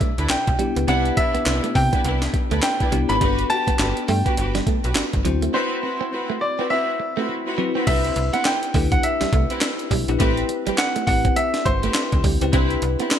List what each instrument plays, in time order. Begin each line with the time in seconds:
Already playing: tine electric piano B2 D4 E4 G4, grand piano E5
0.01 clean electric guitar A3, kick, closed hi-hat
0.18 fm bass D2, string section D4 E4 B4, closed hi-hat
0.29 grand piano G5, muted clean electric guitar stroke, snare, clap, closed hi-hat
0.47 fm bass B1, kick, closed hi-hat
0.59 clean electric guitar G3, tine electric piano B3 D4 E4 G4, closed hi-hat
0.76 fm bass C#2, clean electric guitar B3, closed hi-hat
0.88 fm bass C2, tine electric piano B3 D4 E4 G4, clean electric guitar C4, string section D4 E4 B4, grand piano F#5, closed hi-hat
1.05 closed hi-hat
1.17 string section D4 E4 B4, grand piano E5, muted clean electric guitar stroke, kick, closed hi-hat
1.35 fm bass C2, clean electric guitar B3, closed hi-hat
1.46 fm bass C2, string section D4 E4 B4, snare, clap, closed hi-hat
1.64 clean electric guitar A3, closed hi-hat
1.75 fm bass C3, grand piano G5, muted clean electric guitar stroke, kick, open hi-hat
1.93 clean electric guitar B3, string section D4 E4 B4, kick, closed hi-hat
2.04 fm bass C2, clean electric guitar B3, string section D4 E4 B4, closed hi-hat
2.22 snare, closed hi-hat
2.34 muted clean electric guitar stroke, kick, closed hi-hat
2.51 fm bass D2, clean electric guitar A3, string section D4 E4 B4, closed hi-hat
2.62 grand piano G5, muted clean electric guitar stroke, snare, clap, closed hi-hat
2.80 string section D4 E4 B4, kick, closed hi-hat
2.92 fm bass C2, clean electric guitar G3, tine electric piano B3 D4 E4 G4, closed hi-hat
3.09 fm bass G#1, clean electric guitar B3, string section D4 E4 B4, grand piano B5, closed hi-hat
3.21 fm bass G1, clean electric guitar G3, tine electric piano A#3 D4 F#4 A4, string section F#4 G4 B4, kick, closed hi-hat
3.27 tine electric piano B3
3.39 closed hi-hat
3.50 string section F#4 G4 B4, grand piano A5, muted clean electric guitar stroke, closed hi-hat
3.67 fm bass G1, clean electric guitar B3, kick, closed hi-hat
3.79 fm bass G1, string section F#4 G4 B4, muted clean electric guitar stroke, snare, clap, closed hi-hat
3.97 closed hi-hat
4.08 fm bass G2, clean electric guitar A3, grand piano G5, open hi-hat
4.26 clean electric guitar B3, string section F#4 G4 B4, kick, closed hi-hat
4.37 fm bass G1, string section F#4 G4 B4, muted clean electric guitar stroke, closed hi-hat
4.55 clean electric guitar G3, snare, closed hi-hat
4.67 clean electric guitar A3, kick, closed hi-hat
4.84 fm bass B1, string section F#4 G4 B4, closed hi-hat
4.95 muted clean electric guitar stroke, snare, clap, closed hi-hat
5.13 fm bass G1, kick, closed hi-hat
5.25 fm bass D2, clean electric guitar F#3, tine electric piano C4 E4 F#4 C5, closed hi-hat
5.42 clean electric guitar A3, closed hi-hat
5.54 string section C4 E4 F#4 B4, clean electric guitar D4, grand piano C5
5.83 string section C4 E4 F#4 B4, muted clean electric guitar stroke
6.01 clean electric guitar C4
6.12 string section C4 E4 F#4 B4
6.30 clean electric guitar A3
6.41 grand piano D5, muted clean electric guitar stroke
6.59 string section C4 E4 F#4 B4, clean electric guitar C4
6.70 string section C4 E4 F#4 B4, clean electric guitar C4, grand piano E5
7.00 muted clean electric guitar stroke
7.17 clean electric guitar A3, string section C4 E4 F#4 B4
7.29 muted clean electric guitar stroke
7.46 string section C4 E4 F#4 B4
7.58 clean electric guitar F#3, tine electric piano C4 E4 F#4 B4
7.75 clean electric guitar C4, string section C4 E4 F#4 B4
7.87 fm bass C2, string section C4 E4 B4, clean electric guitar C4, tine electric piano D4 E4 G4 A4, grand piano E5, kick, closed hi-hat, crash
7.95 tine electric piano B4
8.04 closed hi-hat
8.16 fm bass C2, muted clean electric guitar stroke, closed hi-hat
8.33 clean electric guitar B3, string section C4 E4 B4, grand piano F#5, closed hi-hat
8.45 grand piano G5, muted clean electric guitar stroke, snare, clap, closed hi-hat
8.63 closed hi-hat
8.74 fm bass D2, clean electric guitar A3, tine electric piano D4 E4 G4 B4, kick, open hi-hat
8.92 clean electric guitar B3, grand piano F#5, kick, closed hi-hat
9.03 grand piano E5, muted clean electric guitar stroke, closed hi-hat
9.21 fm bass C2, clean electric guitar G3, snare, closed hi-hat
9.33 fm bass C2, clean electric guitar A3, kick, closed hi-hat
9.50 string section C4 E4 B4, closed hi-hat
9.61 muted clean electric guitar stroke, snare, clap, closed hi-hat
9.79 closed hi-hat
9.91 fm bass B1, clean electric guitar G3, kick, open hi-hat
10.08 fm bass A#1, clean electric guitar B3, tine electric piano D4 E4 G4 B4, closed hi-hat
10.20 fm bass A1, clean electric guitar A3, string section C4 G4 B4, tine electric piano C4 E4 G4 B4, kick, closed hi-hat
10.37 closed hi-hat
10.49 muted clean electric guitar stroke, closed hi-hat
10.67 fm bass A1, clean electric guitar G3, string section C4 G4 B4, closed hi-hat
10.78 grand piano F#5, snare, clap, closed hi-hat
10.96 clean electric guitar A3, closed hi-hat
11.07 fm bass A1, tine electric piano C4 E4 G4 B4, grand piano F#5, muted clean electric guitar stroke, kick, open hi-hat
11.25 clean electric guitar C4, kick, closed hi-hat
11.36 clean electric guitar C4, grand piano E5, closed hi-hat
11.54 snare, closed hi-hat
11.65 fm bass G1, grand piano C5, muted clean electric guitar stroke, kick, closed hi-hat
11.83 clean electric guitar A3, string section C4 G4 B4, closed hi-hat
11.94 muted clean electric guitar stroke, snare, clap, closed hi-hat
12.12 fm bass D2, kick, closed hi-hat
12.24 fm bass D2, clean electric guitar G3, kick, open hi-hat
12.41 fm bass C#2, tine electric piano C4 E4 G4 B4, clean electric guitar C4, closed hi-hat
12.53 fm bass C2, string section C4 E4 B4, clean electric guitar C4, tine electric piano D4 E4 G4 B4, kick, closed hi-hat
12.70 closed hi-hat
12.82 fm bass C2, muted clean electric guitar stroke, closed hi-hat
12.99 clean electric guitar B3, string section C4 E4 B4, closed hi-hat
13.11 muted clean electric guitar stroke, snare, clap, closed hi-hat